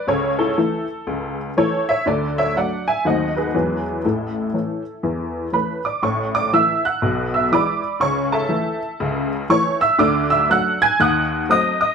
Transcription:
X:1
M:4/4
L:1/8
Q:"Swing" 1/4=121
K:A
V:1 name="Honky-tonk piano"
[Ac] [EA]4 z [Ac] [ce] | [Ad] [ce] [df] [eg] [^df] [GB]3 | [EA]6 [Bb] [dd'] | [cc'] [dd'] [ee'] [ff']2 [ee'] [dbd']2 |
[cc'] [Aea]4 z [cc'] [ee'] | [dd'] [ee'] [ff'] [gg'] [f^d'f']2 [^dd'] [dd'] |]
V:2 name="Honky-tonk piano" clef=bass
[C,,C,]2 [E,A,E]2 [C,,C,]2 [E,A,E]2 | [D,,D,]2 [F,A,D]2 [^D,,^D,F,A,^B,]2 [E,,E,F,G,C]2 | [A,,,A,,]2 [E,A,C]2 [E,,E,]2 [E,A,C]2 | [A,,,A,,]2 [E,A,E]2 [B,,,B,,]2 [E,G,E]2 |
[C,,C,]2 [E,A,E]2 [C,,C,]2 [E,A,E]2 | [D,,D,]2 [F,A,D]2 [^D,,^D,]2 [F,A,^B,]2 |]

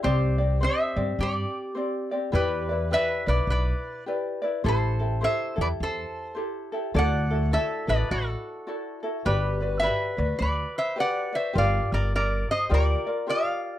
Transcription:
X:1
M:4/4
L:1/8
Q:"Swing" 1/4=104
K:G
V:1 name="Resonator guitar played with a steel bar"
[Gc]2 [ce]2 [Gd]3 z | [GB]2 [Be] [Bd] [Bd]2 z2 | [Ac]2 [ce] [Bd] [Ac]2 z2 | [df]2 [Ae] [Bd] [FA]3 z |
[GB]2 [Be]2 [Bd] [ce] [df] [ce] | [K:Gm] [df] [Bd] [Bd] [ce] [Bd]2 [df]2 |]
V:2 name="Ukulele"
[CGcd] [CGd] [CGcd] [CGd]3 [CGcd] [CGd] | [EGBd] [EBd] [EGBd] [EBd]3 [EGBd] [EBd] | [EGAc] [EGA] [EGAc] [EGA]3 [EGAc] [EGA] | [EFAd] [EFA] [EFAd] [EFA]3 [EFAd] [EFA] |
[FGBd] [FBd] [FGBd] [FBd]3 [FGBd] [FBd] | [K:Gm] [FGBd]4 [FGBd] [FBd] [FGBd]2 |]
V:3 name="Upright bass" clef=bass
C,,3 G,, G,, z3 | E,,3 B,,, B,,, z3 | A,,,3 E,, E,, z3 | D,,3 A,,, A,,, z3 |
G,,,3 D,, D,, z3 | [K:Gm] G,,, G,,,3 D,, z3 |]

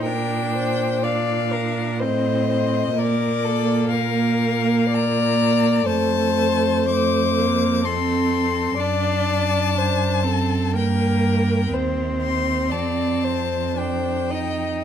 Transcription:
X:1
M:3/4
L:1/8
Q:1/4=62
K:Bb
V:1 name="Violin"
g2 f2 e2 | d2 f2 b2 | a2 d'2 c'2 | a4 g2 |
z c' a2 g2 |]
V:2 name="Violin"
B c d B c c | B A B2 d2 | c4 A2 | d2 c A B2 |
c2 d c c e |]
V:3 name="Viola"
D2 D2 C2 | B,6 | A,2 A, B, C2 | D2 D C B,2 |
C4 D E |]
V:4 name="Cello" clef=bass
B,,4 A,,2 | B,,6 | F,,6 | ^F,,4 G,,2 |
E,,2 F,,4 |]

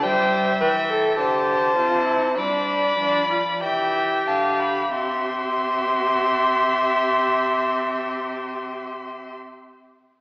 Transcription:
X:1
M:4/4
L:1/16
Q:1/4=45
K:C
V:1 name="Violin"
g2 g2 a4 b4 g2 a b | c'16 |]
V:2 name="Violin"
e4 c4 d4 e2 f2 | e16 |]
V:3 name="Viola"
c2 B A G2 F E D2 D F G4 | G16 |]
V:4 name="Cello" clef=bass
G,2 E,2 D,2 C,2 G,2 F,2 E,2 D,2 | C,16 |]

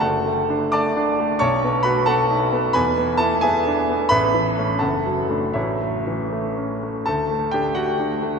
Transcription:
X:1
M:6/8
L:1/8
Q:3/8=87
K:D
V:1 name="Grand piano"
[Afa]3 [dad']3 | [cac']2 [Bb] [Afa]3 | [B^gb]2 [Aa] [^Geg]3 | [Beb]3 [Afa]3 |
[Ece]4- [Ece] z | [Aa]2 [Gg] [Ff]3 |]
V:2 name="Grand piano"
F,,, A, D A, D A, | B,,, B, F B, ^D B, | E,, B, E B, D B, | A,,, E, [A,C] F,,, F, [A,D] |
A,,, A, E, A, C A, | D,, A, D A, D A, |]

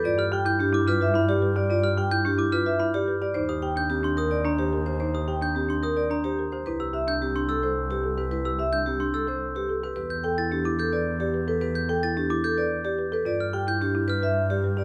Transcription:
X:1
M:3/4
L:1/16
Q:1/4=109
K:C
V:1 name="Glockenspiel"
z f' z g' z d' f' z b z3 | z f' z g' z d' f' z b z3 | z _e' z g' z c' e' z _b z3 | z _e' z g' z c' e' z _b z3 |
z e' z g' z c' e' z4 z | z e' z g' z c' e' z4 z | z g' z a' z d' g' z4 z | z g' z a' z d' g' z4 z |
z f' z g' z2 f' z4 z |]
V:2 name="Vibraphone"
d z g z G z B e z G z d | d z g z G z B e z G z d | c z g z G z _B d z G z c | c z g z G z _B d z G z c |
B z e z G z A c z G z B | B z e z G z A c z G z B | B z g z G z A d z G z B | B z g z G z A d z G z B |
d z g z G z B e z G z d |]
V:3 name="Marimba"
F G G E D E F B E d B G | F G G E D E F B E d B G | _E G G D C D z _B D c B G | _E G G D C D z _B D c B G |
E G G D C D z A z B A G | E G G D C D z A z B A G | G z A E D E z B z d B A | G z A E D E z B z d B A |
F z G E D E z B z d B G |]
V:4 name="Double bass" clef=bass
G,,12- | G,,12 | _E,,12- | _E,,12 |
C,,12- | C,,12 | E,,12- | E,,12 |
G,,12 |]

